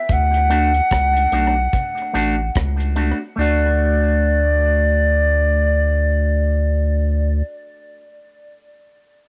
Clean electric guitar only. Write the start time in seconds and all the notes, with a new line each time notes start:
0.50 A3 D4 F#4
1.32 A3 D4 F#4
2.13 A3 D4 F#4
2.96 A3 D4 F#4
3.36 A3 D4
3.41 F#4